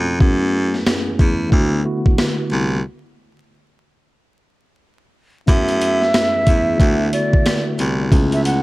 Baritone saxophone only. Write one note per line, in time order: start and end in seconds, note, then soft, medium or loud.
0.00 0.18 F2 medium
0.21 0.83 F#2 loud
1.08 1.13 E2 soft
1.20 1.49 E2 medium
1.52 1.82 D2 loud
2.52 2.81 C2 loud
5.48 6.10 F#2 loud
6.35 6.40 E2 soft
6.47 6.77 E2 medium
6.80 7.10 D2 loud
7.79 8.09 C2 loud
8.12 8.63 C#2 loud